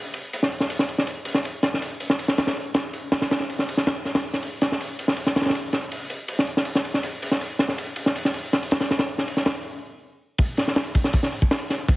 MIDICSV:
0, 0, Header, 1, 2, 480
1, 0, Start_track
1, 0, Tempo, 372671
1, 1865, Time_signature, 4, 2, 24, 8
1, 15411, End_track
2, 0, Start_track
2, 0, Title_t, "Drums"
2, 178, Note_on_c, 9, 46, 71
2, 306, Note_off_c, 9, 46, 0
2, 429, Note_on_c, 9, 46, 81
2, 550, Note_on_c, 9, 38, 44
2, 558, Note_off_c, 9, 46, 0
2, 672, Note_on_c, 9, 46, 68
2, 679, Note_off_c, 9, 38, 0
2, 778, Note_on_c, 9, 38, 40
2, 800, Note_off_c, 9, 46, 0
2, 901, Note_on_c, 9, 46, 89
2, 907, Note_off_c, 9, 38, 0
2, 1020, Note_on_c, 9, 38, 48
2, 1029, Note_off_c, 9, 46, 0
2, 1143, Note_on_c, 9, 46, 55
2, 1149, Note_off_c, 9, 38, 0
2, 1268, Note_on_c, 9, 38, 43
2, 1272, Note_off_c, 9, 46, 0
2, 1378, Note_on_c, 9, 46, 80
2, 1396, Note_off_c, 9, 38, 0
2, 1507, Note_off_c, 9, 46, 0
2, 1612, Note_on_c, 9, 46, 78
2, 1732, Note_on_c, 9, 38, 44
2, 1741, Note_off_c, 9, 46, 0
2, 1861, Note_off_c, 9, 38, 0
2, 1868, Note_on_c, 9, 46, 78
2, 1997, Note_off_c, 9, 46, 0
2, 2096, Note_on_c, 9, 46, 58
2, 2099, Note_on_c, 9, 38, 51
2, 2225, Note_off_c, 9, 46, 0
2, 2228, Note_off_c, 9, 38, 0
2, 2239, Note_on_c, 9, 38, 37
2, 2344, Note_on_c, 9, 46, 82
2, 2368, Note_off_c, 9, 38, 0
2, 2473, Note_off_c, 9, 46, 0
2, 2579, Note_on_c, 9, 46, 62
2, 2702, Note_on_c, 9, 38, 54
2, 2708, Note_off_c, 9, 46, 0
2, 2823, Note_on_c, 9, 46, 82
2, 2831, Note_off_c, 9, 38, 0
2, 2941, Note_on_c, 9, 38, 53
2, 2952, Note_off_c, 9, 46, 0
2, 3063, Note_on_c, 9, 46, 75
2, 3069, Note_off_c, 9, 38, 0
2, 3069, Note_on_c, 9, 38, 105
2, 3181, Note_off_c, 9, 38, 0
2, 3181, Note_on_c, 9, 38, 98
2, 3187, Note_off_c, 9, 46, 0
2, 3187, Note_on_c, 9, 46, 73
2, 3308, Note_off_c, 9, 46, 0
2, 3308, Note_on_c, 9, 46, 55
2, 3310, Note_off_c, 9, 38, 0
2, 3437, Note_off_c, 9, 46, 0
2, 3534, Note_on_c, 9, 46, 78
2, 3538, Note_on_c, 9, 38, 98
2, 3663, Note_off_c, 9, 46, 0
2, 3667, Note_off_c, 9, 38, 0
2, 3780, Note_on_c, 9, 46, 79
2, 3909, Note_off_c, 9, 46, 0
2, 4017, Note_on_c, 9, 38, 97
2, 4018, Note_on_c, 9, 46, 75
2, 4142, Note_off_c, 9, 38, 0
2, 4142, Note_on_c, 9, 38, 91
2, 4146, Note_off_c, 9, 46, 0
2, 4146, Note_on_c, 9, 46, 81
2, 4264, Note_off_c, 9, 46, 0
2, 4264, Note_on_c, 9, 46, 74
2, 4267, Note_off_c, 9, 38, 0
2, 4267, Note_on_c, 9, 38, 101
2, 4378, Note_off_c, 9, 38, 0
2, 4378, Note_on_c, 9, 38, 46
2, 4393, Note_off_c, 9, 46, 0
2, 4504, Note_on_c, 9, 46, 74
2, 4507, Note_off_c, 9, 38, 0
2, 4623, Note_on_c, 9, 38, 42
2, 4633, Note_off_c, 9, 46, 0
2, 4749, Note_on_c, 9, 46, 86
2, 4752, Note_off_c, 9, 38, 0
2, 4861, Note_on_c, 9, 38, 50
2, 4878, Note_off_c, 9, 46, 0
2, 4984, Note_off_c, 9, 38, 0
2, 4984, Note_on_c, 9, 38, 97
2, 4985, Note_on_c, 9, 46, 76
2, 5113, Note_off_c, 9, 38, 0
2, 5113, Note_off_c, 9, 46, 0
2, 5221, Note_on_c, 9, 38, 38
2, 5222, Note_on_c, 9, 46, 57
2, 5345, Note_off_c, 9, 38, 0
2, 5345, Note_on_c, 9, 38, 97
2, 5351, Note_off_c, 9, 46, 0
2, 5353, Note_on_c, 9, 46, 75
2, 5473, Note_off_c, 9, 38, 0
2, 5482, Note_off_c, 9, 46, 0
2, 5583, Note_on_c, 9, 38, 41
2, 5589, Note_on_c, 9, 46, 64
2, 5703, Note_off_c, 9, 46, 0
2, 5703, Note_on_c, 9, 46, 77
2, 5712, Note_off_c, 9, 38, 0
2, 5832, Note_off_c, 9, 46, 0
2, 5945, Note_on_c, 9, 46, 63
2, 5948, Note_on_c, 9, 38, 57
2, 6073, Note_off_c, 9, 46, 0
2, 6077, Note_off_c, 9, 38, 0
2, 6078, Note_on_c, 9, 38, 40
2, 6189, Note_on_c, 9, 46, 76
2, 6206, Note_off_c, 9, 38, 0
2, 6318, Note_off_c, 9, 46, 0
2, 6427, Note_on_c, 9, 46, 72
2, 6543, Note_on_c, 9, 38, 53
2, 6556, Note_off_c, 9, 46, 0
2, 6653, Note_on_c, 9, 46, 88
2, 6672, Note_off_c, 9, 38, 0
2, 6782, Note_off_c, 9, 46, 0
2, 6782, Note_on_c, 9, 38, 48
2, 6906, Note_off_c, 9, 38, 0
2, 6906, Note_on_c, 9, 38, 84
2, 6914, Note_on_c, 9, 46, 63
2, 6967, Note_off_c, 9, 46, 0
2, 6967, Note_on_c, 9, 46, 57
2, 6975, Note_off_c, 9, 38, 0
2, 6975, Note_on_c, 9, 38, 89
2, 7024, Note_off_c, 9, 46, 0
2, 7024, Note_on_c, 9, 46, 61
2, 7031, Note_off_c, 9, 38, 0
2, 7031, Note_on_c, 9, 38, 86
2, 7082, Note_off_c, 9, 38, 0
2, 7082, Note_on_c, 9, 38, 93
2, 7094, Note_off_c, 9, 46, 0
2, 7094, Note_on_c, 9, 46, 67
2, 7151, Note_off_c, 9, 46, 0
2, 7151, Note_on_c, 9, 46, 85
2, 7211, Note_off_c, 9, 38, 0
2, 7280, Note_off_c, 9, 46, 0
2, 7377, Note_on_c, 9, 46, 72
2, 7380, Note_on_c, 9, 38, 47
2, 7506, Note_off_c, 9, 46, 0
2, 7508, Note_off_c, 9, 38, 0
2, 7620, Note_on_c, 9, 46, 90
2, 7749, Note_off_c, 9, 46, 0
2, 7854, Note_on_c, 9, 46, 67
2, 7983, Note_off_c, 9, 46, 0
2, 8093, Note_on_c, 9, 46, 83
2, 8221, Note_off_c, 9, 46, 0
2, 8228, Note_on_c, 9, 38, 48
2, 8332, Note_on_c, 9, 46, 70
2, 8357, Note_off_c, 9, 38, 0
2, 8460, Note_off_c, 9, 46, 0
2, 8462, Note_on_c, 9, 38, 48
2, 8567, Note_on_c, 9, 46, 89
2, 8591, Note_off_c, 9, 38, 0
2, 8696, Note_off_c, 9, 46, 0
2, 8699, Note_on_c, 9, 38, 54
2, 8822, Note_on_c, 9, 46, 66
2, 8828, Note_off_c, 9, 38, 0
2, 8941, Note_on_c, 9, 38, 39
2, 8951, Note_off_c, 9, 46, 0
2, 9055, Note_on_c, 9, 46, 88
2, 9069, Note_off_c, 9, 38, 0
2, 9184, Note_off_c, 9, 46, 0
2, 9304, Note_on_c, 9, 46, 83
2, 9421, Note_on_c, 9, 38, 40
2, 9433, Note_off_c, 9, 46, 0
2, 9546, Note_on_c, 9, 46, 77
2, 9550, Note_off_c, 9, 38, 0
2, 9675, Note_off_c, 9, 46, 0
2, 9778, Note_on_c, 9, 38, 49
2, 9789, Note_on_c, 9, 46, 64
2, 9896, Note_off_c, 9, 38, 0
2, 9896, Note_on_c, 9, 38, 36
2, 9917, Note_off_c, 9, 46, 0
2, 10024, Note_on_c, 9, 46, 88
2, 10025, Note_off_c, 9, 38, 0
2, 10153, Note_off_c, 9, 46, 0
2, 10252, Note_on_c, 9, 46, 72
2, 10381, Note_off_c, 9, 46, 0
2, 10384, Note_on_c, 9, 38, 46
2, 10504, Note_on_c, 9, 46, 91
2, 10513, Note_off_c, 9, 38, 0
2, 10628, Note_on_c, 9, 38, 46
2, 10633, Note_off_c, 9, 46, 0
2, 10742, Note_on_c, 9, 46, 74
2, 10756, Note_off_c, 9, 38, 0
2, 10870, Note_off_c, 9, 46, 0
2, 10988, Note_on_c, 9, 38, 52
2, 10988, Note_on_c, 9, 46, 61
2, 11112, Note_off_c, 9, 46, 0
2, 11112, Note_on_c, 9, 46, 79
2, 11117, Note_off_c, 9, 38, 0
2, 11220, Note_off_c, 9, 46, 0
2, 11220, Note_on_c, 9, 46, 70
2, 11231, Note_on_c, 9, 38, 101
2, 11341, Note_off_c, 9, 38, 0
2, 11341, Note_on_c, 9, 38, 96
2, 11343, Note_off_c, 9, 46, 0
2, 11343, Note_on_c, 9, 46, 78
2, 11470, Note_off_c, 9, 38, 0
2, 11471, Note_on_c, 9, 38, 86
2, 11472, Note_off_c, 9, 46, 0
2, 11477, Note_on_c, 9, 46, 75
2, 11577, Note_off_c, 9, 46, 0
2, 11577, Note_on_c, 9, 46, 68
2, 11580, Note_off_c, 9, 38, 0
2, 11580, Note_on_c, 9, 38, 100
2, 11701, Note_off_c, 9, 46, 0
2, 11701, Note_on_c, 9, 46, 52
2, 11709, Note_off_c, 9, 38, 0
2, 11827, Note_on_c, 9, 38, 42
2, 11829, Note_off_c, 9, 46, 0
2, 11951, Note_on_c, 9, 46, 83
2, 11955, Note_off_c, 9, 38, 0
2, 12065, Note_on_c, 9, 38, 41
2, 12080, Note_off_c, 9, 46, 0
2, 12179, Note_on_c, 9, 46, 78
2, 12185, Note_off_c, 9, 38, 0
2, 12185, Note_on_c, 9, 38, 103
2, 12307, Note_off_c, 9, 46, 0
2, 12314, Note_off_c, 9, 38, 0
2, 13375, Note_on_c, 9, 46, 91
2, 13381, Note_on_c, 9, 36, 101
2, 13504, Note_off_c, 9, 46, 0
2, 13510, Note_off_c, 9, 36, 0
2, 13618, Note_on_c, 9, 46, 74
2, 13627, Note_on_c, 9, 38, 52
2, 13747, Note_off_c, 9, 46, 0
2, 13750, Note_off_c, 9, 38, 0
2, 13750, Note_on_c, 9, 38, 41
2, 13857, Note_on_c, 9, 46, 93
2, 13861, Note_off_c, 9, 38, 0
2, 13861, Note_on_c, 9, 38, 113
2, 13986, Note_off_c, 9, 46, 0
2, 13990, Note_off_c, 9, 38, 0
2, 14104, Note_on_c, 9, 36, 91
2, 14104, Note_on_c, 9, 46, 71
2, 14223, Note_on_c, 9, 38, 57
2, 14232, Note_off_c, 9, 46, 0
2, 14233, Note_off_c, 9, 36, 0
2, 14336, Note_on_c, 9, 46, 95
2, 14344, Note_on_c, 9, 36, 109
2, 14352, Note_off_c, 9, 38, 0
2, 14463, Note_on_c, 9, 38, 45
2, 14464, Note_off_c, 9, 46, 0
2, 14473, Note_off_c, 9, 36, 0
2, 14587, Note_on_c, 9, 46, 62
2, 14592, Note_off_c, 9, 38, 0
2, 14710, Note_on_c, 9, 36, 94
2, 14716, Note_off_c, 9, 46, 0
2, 14825, Note_on_c, 9, 46, 89
2, 14826, Note_on_c, 9, 38, 118
2, 14839, Note_off_c, 9, 36, 0
2, 14954, Note_off_c, 9, 38, 0
2, 14954, Note_off_c, 9, 46, 0
2, 15072, Note_on_c, 9, 38, 43
2, 15076, Note_on_c, 9, 46, 73
2, 15201, Note_off_c, 9, 38, 0
2, 15204, Note_off_c, 9, 46, 0
2, 15308, Note_on_c, 9, 36, 116
2, 15311, Note_on_c, 9, 46, 86
2, 15411, Note_off_c, 9, 36, 0
2, 15411, Note_off_c, 9, 46, 0
2, 15411, End_track
0, 0, End_of_file